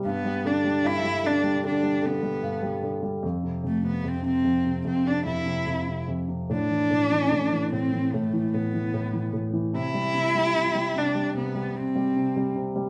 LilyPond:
<<
  \new Staff \with { instrumentName = "Cello" } { \time 4/4 \key a \minor \tempo 4 = 74 b8 d'8 e'8 d'8 d'8 b4 r8 | r8 a16 b16 c'16 c'8. c'16 d'16 e'4 r8 | d'4. c'8 a8 b4 r8 | e'4. d'8 b8 c'4 r8 | }
  \new Staff \with { instrumentName = "Grand piano" } { \clef bass \time 4/4 \key a \minor g,16 g16 d16 g16 g,16 g16 d16 g16 d16 g16 d16 g16 g,16 g16 d16 g16 | f,16 c16 f,16 c16 f,16 c16 f,16 c16 f,16 c16 f,16 c16 f,16 c16 f,16 c16 | a,16 e16 a,16 e16 a,16 e16 a,16 e16 a,16 e16 a,16 e16 a,16 e16 a,16 e16 | c16 g16 c16 g16 c16 g16 c16 g16 c16 g16 c16 g16 c16 g16 c16 g16 | }
>>